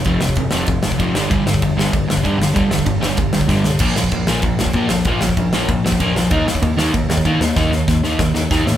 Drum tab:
CC |----------------|----------------|----------------|x---------------|
RD |x---x---x---x---|x---x---x---x---|x---x---x-------|----x---x---x---|
SD |--o---o---o---o-|--o---o---o---o-|--o---o---o-o-o-|--o---o---o---o-|
BD |o--oo---o--oo---|o--oo---o--oo---|o--oo---o--oo---|o--oo---o--oo---|

CC |----------------|----------------|----------------|
RD |x---x---x---x---|x---x---x---x---|----------------|
SD |--o---o---o---o-|--o---o---o---o-|o-o-o-o-o-o-o-o-|
BD |o--oo---o--oo---|o--oo---o--oo---|o---o---o---o---|